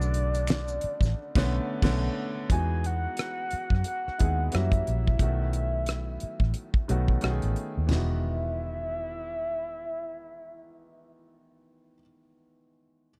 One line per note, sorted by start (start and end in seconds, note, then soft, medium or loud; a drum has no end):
0.00 0.79 B1 loud
0.00 0.66 C#3 medium
0.00 0.65 D3 medium
0.00 0.65 A3 medium
0.00 0.65 B3 medium
0.00 0.66 F#4 medium
0.00 1.84 D5 loud
0.00 maracas medium
0.14 closed hi-hat medium
0.34 closed hi-hat soft
0.34 maracas soft
0.47 finger snap medium
0.47 snare loud
0.47 closed hi-hat medium
0.47 maracas medium
0.68 maracas medium
0.81 muted fingered electric bass stroke medium
0.81 closed hi-hat medium
1.01 1.12 A1 medium
1.01 kick medium
1.01 maracas medium
1.05 snare soft
1.35 1.58 B1 loud
1.35 1.57 D3 loud
1.35 1.57 A3 loud
1.35 1.58 B3 loud
1.35 1.58 C#4 loud
1.35 kick loud
1.35 snare loud
1.35 crash medium
1.82 2.07 B1 medium
1.82 2.07 D3 loud
1.82 2.07 A3 loud
1.82 2.07 B3 loud
1.82 2.08 C#4 loud
1.82 kick loud
1.82 snare loud
1.82 crash medium
2.50 3.06 E2 medium
2.50 3.69 E3 medium
2.50 3.69 G#3 medium
2.50 3.69 B3 medium
2.50 3.69 D#4 medium
2.50 3.70 F#4 medium
2.50 2.88 G#5 loud
2.50 kick loud
2.50 closed hi-hat medium
2.84 3.86 F#5 loud
2.84 closed hi-hat medium
3.17 cross-stick loud
3.17 closed hi-hat medium
3.51 muted fingered electric bass stroke soft
3.51 closed hi-hat medium
3.70 3.82 F#2 medium
3.70 kick medium
3.75 cross-stick soft
3.84 4.57 F#5 loud
3.84 closed hi-hat medium
4.08 muted fingered electric bass stroke soft
4.08 cross-stick soft
4.18 4.48 D#2 medium
4.18 4.53 G#3 medium
4.18 4.53 B3 medium
4.18 4.53 D#4 medium
4.18 4.52 E4 medium
4.18 4.53 G#4 medium
4.18 kick medium
4.18 closed hi-hat medium
4.52 4.81 F#2 medium
4.52 5.12 E3 medium
4.52 5.12 G3 medium
4.52 5.12 A#3 medium
4.52 5.12 C#4 medium
4.52 5.13 F#4 medium
4.52 7.23 E5 medium
4.52 cross-stick loud
4.52 closed hi-hat medium
4.72 kick medium
4.72 closed hi-hat soft
4.87 5.15 A#1 medium
4.87 closed hi-hat medium
5.07 kick medium
5.19 6.17 B1 medium
5.19 6.38 D#3 medium
5.19 6.38 F#3 medium
5.19 6.39 A3 medium
5.19 6.39 B3 medium
5.19 6.39 F#4 medium
5.19 kick loud
5.19 closed hi-hat medium
5.53 closed hi-hat medium
5.86 cross-stick medium
5.86 closed hi-hat medium
6.20 muted fingered electric bass stroke soft
6.20 closed hi-hat soft
6.40 6.52 A1 medium
6.40 kick medium
6.44 cross-stick soft
6.54 closed hi-hat medium
6.74 kick medium
6.88 7.17 B1 medium
6.88 7.20 D#3 medium
6.88 7.22 F#3 medium
6.88 7.21 A3 medium
6.88 7.22 B3 medium
6.88 7.22 F#4 medium
6.88 closed hi-hat medium
7.08 kick medium
7.21 7.40 B1 medium
7.21 7.82 D#3 medium
7.21 7.82 A3 medium
7.21 7.82 B3 medium
7.21 7.82 C#4 medium
7.21 7.31 F#4 medium
7.21 cross-stick medium
7.21 closed hi-hat medium
7.30 7.86 G#4 medium
7.42 7.54 A1 medium
7.42 closed hi-hat soft
7.56 closed hi-hat soft
7.77 7.88 D#2 medium
7.87 11.93 E3 medium
7.87 11.96 G#3 medium
7.87 floor tom medium
7.87 splash medium
7.91 11.97 E1 medium
7.91 11.99 D#3 medium
7.91 11.97 B3 medium
7.91 11.36 E5 medium
7.91 snare medium
7.95 12.02 F#4 medium